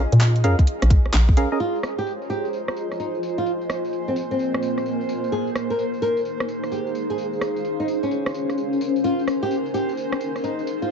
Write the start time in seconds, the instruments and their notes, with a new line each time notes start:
Already playing: ambient pad F4 G#4 D#5 G#5
0.12 fm bass A#2, closed hi-hat
0.21 clap, closed hi-hat
0.30 ambient pad C#5
0.36 closed hi-hat
0.44 fm bass F2, synth stab C#4 G#4 A#4 F5, open hi-hat
0.59 ambient pad A#5, kick, closed hi-hat
0.67 closed hi-hat
0.82 fm bass A#1, cross-stick, closed hi-hat
0.90 kick, open hi-hat
1.06 cross-stick
1.14 fm bass A#1, clap, closed hi-hat
1.29 kick
1.37 synth stab C#4 G#4 A#4 F5, open hi-hat
1.52 synth stab C#4 G#4 A#4 D#5
1.60 nylon-string guitar F4, ambient pad F4, analog synth pad C5, tambourine
1.75 tambourine
1.83 ambient pad D#5, cross-stick, tambourine
1.98 nylon-string guitar G4, tambourine
2.07 tambourine
2.22 tambourine
2.30 nylon-string guitar G4, tambourine
2.45 ambient pad G#5, tambourine
2.53 tambourine
2.68 cross-stick, tambourine
2.76 tambourine
2.92 cross-stick, tambourine
3.00 nylon-string guitar D#4, tambourine
3.15 tambourine
3.23 tambourine
3.38 nylon-string guitar F4, tambourine
3.46 ambient pad A#3, tambourine
3.61 tambourine
3.70 cross-stick, tambourine
3.80 ambient pad A#4
3.85 tambourine
3.93 tambourine
4.08 nylon-string guitar C4, tambourine
4.16 tambourine
4.31 nylon-string guitar C4, tambourine
4.39 tambourine
4.54 cross-stick, tambourine
4.63 tambourine
4.78 cross-stick, tambourine
4.86 tambourine
5.01 tambourine
5.09 tambourine
5.24 tambourine
5.32 ambient pad D#4, nylon-string guitar G#4, tambourine
5.47 tambourine
5.55 cross-stick, tambourine
5.70 nylon-string guitar A#4, tambourine
5.79 tambourine
5.89 ambient pad G#4
5.94 tambourine
6.02 nylon-string guitar A#4, tambourine
6.17 ambient pad F5, tambourine
6.25 tambourine
6.40 cross-stick, tambourine
6.48 tambourine
6.64 cross-stick, tambourine
6.72 nylon-string guitar G4, tambourine
6.87 tambourine
6.95 tambourine
7.10 nylon-string guitar G#4, tambourine
7.18 ambient pad C#4, tambourine
7.33 tambourine
7.41 cross-stick, tambourine
7.57 tambourine
7.65 tambourine
7.80 nylon-string guitar D#4, tambourine
7.85 ambient pad A#4, tambourine
8.03 nylon-string guitar C#4, ambient pad G#5, tambourine
8.11 tambourine
8.26 cross-stick, tambourine
8.34 tambourine
8.50 cross-stick, tambourine
8.58 tambourine
8.73 tambourine
8.81 tambourine
8.96 tambourine
9.04 ambient pad D#4, nylon-string guitar F4, analog synth pad C5, tambourine
9.19 tambourine
9.28 cross-stick, tambourine
9.43 nylon-string guitar G4, tambourine
9.51 tambourine
9.66 tambourine
9.72 nylon-string guitar G4, ambient pad G#4, tambourine
9.89 ambient pad F5, tambourine
9.97 tambourine
10.12 cross-stick, tambourine
10.21 tambourine
10.36 cross-stick, tambourine
10.44 nylon-string guitar D#4, tambourine
10.59 tambourine
10.67 tambourine
10.82 nylon-string guitar F4, tambourine